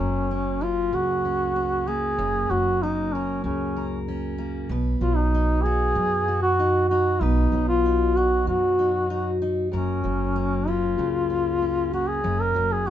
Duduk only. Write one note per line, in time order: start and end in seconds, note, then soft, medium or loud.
0.00 0.65 C#4 medium
0.64 0.96 F4 medium
0.94 1.90 F#4 medium
1.88 2.52 G#4 medium
2.51 2.84 F#4 medium
2.82 3.15 D#4 medium
3.13 3.43 C#4 medium
3.44 4.03 C#4 medium
5.01 5.17 F4 medium
5.16 5.64 D#4 medium
5.63 6.42 G#4 loud
6.42 6.86 F#4 medium
6.89 7.23 F#4 medium
7.22 7.68 D#4 medium
7.69 8.17 F4 medium
8.16 8.47 F#4 medium
8.48 9.38 F#4 medium
9.74 10.71 C#4 medium
10.70 11.93 F4 medium
11.94 12.10 F#4 medium
12.09 12.42 G#4 medium
12.41 12.74 A#4 medium
12.72 12.89 G#4 medium